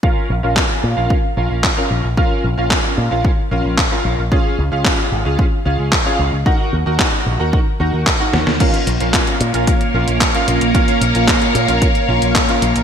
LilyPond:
<<
  \new Staff \with { instrumentName = "String machine" } { \time 4/4 \key bes \minor \tempo 4 = 112 r1 | r1 | r1 | r1 |
<bes bes' des'' f''>1~ | <bes bes' des'' f''>1 | }
  \new Staff \with { instrumentName = "Electric grand piano" } { \time 4/4 \key bes \minor <des' f' bes' f''>8 r16 <des' f' bes' f''>4 <des' f' bes' f''>16 r8 <des' f' bes' f''>8 r16 <des' f' bes' f''>8 r16 | <des' f' bes' f''>8 r16 <des' f' bes' f''>4 <des' f' bes' f''>16 r8 <des' f' bes' f''>8 r16 <des' f' bes' f''>8 r16 | <des' f' aes' f''>8 r16 <des' f' aes' f''>4 <des' f' aes' f''>16 r8 <des' f' aes' f''>8 r16 <des' f' aes' f''>8 r16 | <ees' ges' bes' ges''>8 r16 <ees' ges' bes' ges''>4 <ees' ges' bes' ges''>16 r8 <ees' ges' bes' ges''>8 r16 <ees' ges' bes' ges''>8 r16 |
<des' f' bes' f''>8 r16 <des' f' bes' f''>4 <des' f' bes' f''>16 r8 <des' f' bes' f''>8 r16 <des' f' bes' f''>8 r16 | <des' f' bes' f''>8 r16 <des' f' bes' f''>4 <des' f' bes' f''>16 r8 <des' f' bes' f''>8 r16 <des' f' bes' f''>8 r16 | }
  \new Staff \with { instrumentName = "Picked electric bass" } { \clef bass \time 4/4 \key bes \minor r8 bes,,16 bes,,16 r8 bes,16 bes,,16 r8 bes,,16 bes,,16 r8 bes,,16 bes,,16 | r8 bes,,16 bes,,16 r8 bes,16 bes,,16 r8 bes,,16 bes,,16 r8 bes,,16 bes,,16 | r8 des,16 des,16 r8 aes,,16 des,16 r8 des,16 des,16 r8 des,16 des,16 | r8 ees,16 ees,16 r8 bes,,16 ees,16 r8 ees,16 ees,16 r8 ees,16 ees,16 |
r8 bes,,16 bes,,16 r8 bes,16 bes,,16 r8 bes,,16 bes,,16 r8 bes,,16 bes,,16 | r8 bes,,16 bes,,16 r8 bes,16 bes,,16 r8 bes,,16 bes,,16 r8 bes,,16 bes,,16 | }
  \new DrumStaff \with { instrumentName = "Drums" } \drummode { \time 4/4 bd4 <hc bd>4 bd4 <hc bd>4 | bd4 <hc bd>4 bd4 <hc bd>4 | bd4 <hc bd>4 bd4 <hc bd>4 | bd4 <hc bd>4 bd4 <hc bd>8 sn16 sn16 |
<cymc hh bd>16 hh16 hh16 hh16 <hc hh bd>16 hh16 hh16 hh16 <hh bd>16 hh8 hh16 <hc hh bd>16 hh16 hh16 hh16 | <hh bd>16 hh16 hh16 hh16 <hc hh bd>16 hh16 hh16 hh16 <hh bd>16 hh8 hh16 <hc hh bd>16 hh16 hh16 hh16 | }
>>